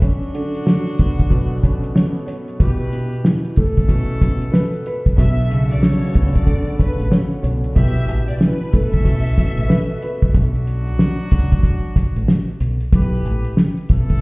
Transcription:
0.02 F#3 C#4 D4 F#4, kick, closed hi-hat
0.23 closed hi-hat
0.34 D3, closed hi-hat
0.54 closed hi-hat
0.66 F#3, snare
0.87 closed hi-hat
0.98 B3, kick, closed hi-hat
1.19 kick, closed hi-hat
1.30 B2, kick, closed hi-hat
1.63 C#4, kick, closed hi-hat
1.84 closed hi-hat
1.95 C#5, snare
2.16 closed hi-hat
2.26 C#5, closed hi-hat
2.48 closed hi-hat
2.59 B2 E4 G4 B4, kick, closed hi-hat
2.81 closed hi-hat
2.93 B2, closed hi-hat
3.12 closed hi-hat
3.24 E3, snare
3.45 closed hi-hat
3.56 A3 C#4 E4 A4, kick, closed hi-hat
3.77 kick, closed hi-hat
3.88 B2, kick, closed hi-hat
4.10 closed hi-hat
4.21 B2, kick, snare, closed hi-hat
4.42 closed hi-hat
4.52 B4, snare
4.74 closed hi-hat
4.86 B4, closed hi-hat
5.06 kick, closed hi-hat
5.18 B1 B2 D4 F#4 A4 E5, kick, closed hi-hat
5.39 closed hi-hat
5.50 C#3, closed hi-hat
5.70 D5, closed hi-hat
5.82 F#3 C#5, snare
6.03 closed hi-hat
6.14 C#2 B3, kick, closed hi-hat
6.35 D5, kick, closed hi-hat
6.46 D3, kick, closed hi-hat
6.68 closed hi-hat
6.79 C#4 B4, kick, closed hi-hat
7.00 A1, closed hi-hat
7.11 C#5, snare
7.32 closed hi-hat
7.42 B1 C#5, closed hi-hat
7.64 closed hi-hat
7.75 B1 B2 B3 E4 G4 E5, kick, closed hi-hat
7.97 closed hi-hat
8.08 A1 B2, closed hi-hat
8.28 D5, closed hi-hat
8.40 E3 B4, snare
8.61 closed hi-hat
8.70 B1 A3 C#4 E4 A4, kick, closed hi-hat
8.93 E5, kick, closed hi-hat
9.05 B2, kick, closed hi-hat
9.26 closed hi-hat
9.38 B2, kick, snare, closed hi-hat
9.58 A1, closed hi-hat
9.68 B4, snare
9.90 closed hi-hat
10.02 B4, closed hi-hat
10.22 kick, closed hi-hat
10.34 B1 F#3 D4 F#4, kick, closed hi-hat
10.55 closed hi-hat
10.67 closed hi-hat
10.87 closed hi-hat
10.99 snare
11.19 closed hi-hat
11.31 C#2, kick, closed hi-hat
11.52 kick, closed hi-hat
11.63 kick, closed hi-hat
11.84 closed hi-hat
11.96 kick, closed hi-hat
12.16 A1, closed hi-hat
12.28 snare
12.48 closed hi-hat
12.60 B1, closed hi-hat
12.81 closed hi-hat
12.93 B1 E4 G4 B4, kick, closed hi-hat
13.13 closed hi-hat
13.25 A1, closed hi-hat
13.45 closed hi-hat
13.57 snare
13.77 closed hi-hat
13.89 B1 C#4 E4 A4, kick, closed hi-hat
14.10 kick, closed hi-hat

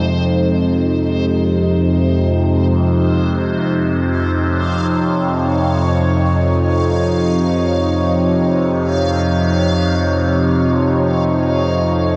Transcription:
Already playing: F2 C3 F3 G#3 D#4 C5
3.97 F5
4.26 C#5

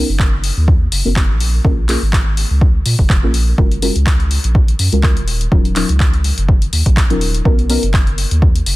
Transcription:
0.09 F#1
0.20 kick, clap
0.44 open hi-hat
0.57 D#2
0.68 kick
0.92 F#1, open hi-hat
1.05 F#1 B3 C#4 D#4 F#4 A#4
1.16 B3 C#4 D#4 F#4 A#4, kick, clap
1.30 A#1
1.40 open hi-hat
1.64 A#1 A#3 C#4 F4 G#4 A#4, kick
1.88 A#3 C#4 F4 G#4 A#4, clap, open hi-hat
2.02 G#1
2.13 kick, clap
2.37 open hi-hat
2.50 C#2
2.61 kick
2.86 A#2, open hi-hat
2.99 F1, kick
3.10 kick, clap
3.23 A#1 A#3 C#4 F4 G#4 A#4
3.34 open hi-hat
3.58 F#1 G#3 C#4 F4 F#4 A#4, kick
3.72 closed hi-hat
3.82 G#3 C#4 F4 F#4 A#4, open hi-hat
3.96 C#2, closed hi-hat
4.07 kick, clap
4.20 closed hi-hat
4.31 open hi-hat
4.44 A#1, closed hi-hat
4.55 kick
4.68 closed hi-hat
4.79 F#2, open hi-hat
4.92 C#2 G#3 C#4 F4 F#4 A#4, closed hi-hat
5.03 G#3 C#4 F4 F#4 A#4, kick, clap
5.17 D#1, closed hi-hat
5.28 open hi-hat
5.41 closed hi-hat
5.51 D#1 F#3 C#4 D#4 F4 A#4, kick
5.65 closed hi-hat
5.76 F#3 C#4 D#4 F4 A#4, clap, open hi-hat
5.89 C#2, closed hi-hat
6.00 kick, clap
6.14 closed hi-hat
6.24 open hi-hat
6.38 F#1, closed hi-hat
6.49 kick
6.62 closed hi-hat
6.73 D#2, open hi-hat
6.86 A#1, kick, closed hi-hat
6.97 kick, clap
7.10 D#1 F#3 C#4 D#4 F4 A#4, closed hi-hat
7.21 open hi-hat
7.35 closed hi-hat
7.45 B1 B3 C#4 D#4 F#4 A#4, kick
7.59 closed hi-hat
7.69 B3 C#4 D#4 F#4 A#4, open hi-hat
7.83 F#1, closed hi-hat
7.94 kick, clap
8.07 closed hi-hat
8.18 open hi-hat
8.31 D#2, closed hi-hat
8.42 kick
8.56 closed hi-hat
8.66 F#1, open hi-hat

